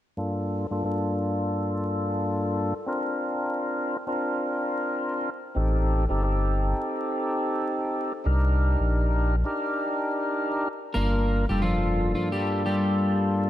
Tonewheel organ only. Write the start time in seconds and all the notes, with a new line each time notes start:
0.17 G2 A#3 D4 F4 A4
0.70 G2 A#3 D4 F4 A4
0.84 G2 A#3 D4 F4 A4
2.86 C4 D4 F4 A#4
4.07 C4 D4 F4 A#4
5.55 C4 D#4 G4 A4
6.09 C4 D#4 G4 A4
6.22 C4 D#4 G4 A4
8.24 D4 D#4 G4 A#4
9.44 D4 D#4 G4 A#4
10.95 G2 A#3 D4 F4 A#4
11.49 G2 A#3 D4 F4 A4
11.63 G2 A#3 D4 F4 A4